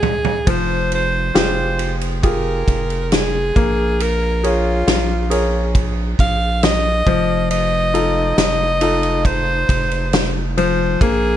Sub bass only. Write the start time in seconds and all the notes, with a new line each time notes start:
0.47 F1
1.35 F1
2.68 F1
3.56 A#1
4.87 A#1
6.19 A#1
7.07 F1
8.37 F1
9.69 F1
11.01 A#1